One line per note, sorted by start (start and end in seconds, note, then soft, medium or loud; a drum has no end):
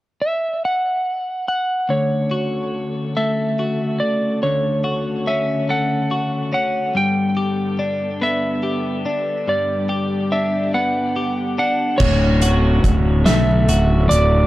0.22 0.65 E5 soft
0.65 1.47 F#5 soft
1.48 1.92 F#5 soft
1.88 4.00 D2 soft
1.88 6.91 C#3 soft
1.88 11.96 D3 soft
1.88 6.91 A3 soft
1.88 9.44 A4 soft
1.88 3.16 C#5 soft
2.31 3.59 F#4 soft
3.17 5.27 A3 soft
3.17 4.03 E5 soft
3.59 4.84 F#4 soft
4.00 4.42 D5 soft
4.43 6.54 D2 soft
4.43 5.30 C#5 soft
4.84 6.11 F#4 soft
5.27 6.51 C#4 soft
5.27 5.66 E5 soft
5.69 6.96 A3 soft
5.69 6.53 F#5 soft
6.11 6.98 F#4 soft
6.53 6.95 C#4 soft
6.53 6.96 F#5 soft
6.95 9.06 G2 soft
6.95 11.97 G3 soft
6.95 11.96 B3 soft
6.95 8.26 G5 medium
7.37 8.62 G4 soft
7.79 9.04 D4 soft
8.22 10.32 B3 soft
8.22 9.49 E5 soft
8.63 9.88 G4 soft
9.06 10.31 D4 soft
9.47 11.58 G2 soft
9.47 11.97 G4 soft
9.47 11.13 D5 soft
9.89 11.15 G4 soft
10.32 11.57 D4 soft
10.32 10.74 E5 soft
10.74 12.01 B3 soft
10.74 11.54 F#5 soft
11.16 12.00 G4 soft
11.58 12.00 D4 soft
11.58 12.02 F#5 soft
11.98 12.82 D1 medium
11.98 14.11 D2 medium
11.98 14.47 C#3 soft
11.98 14.47 D3 soft
11.98 14.47 A3 soft
11.98 13.29 C#5 medium
11.98 kick medium
11.98 crash medium
12.41 13.69 F#4 medium
12.41 closed hi-hat soft
12.84 13.25 D1 medium
12.84 kick medium
12.84 closed hi-hat medium
13.26 13.67 B1 medium
13.26 14.47 A3 medium
13.26 14.13 E5 medium
13.26 snare medium
13.26 closed hi-hat medium
13.68 14.09 D1 medium
13.68 14.47 F#4 medium
13.68 closed hi-hat soft
14.09 14.47 D1 medium
14.09 14.47 D5 medium
14.09 closed hi-hat medium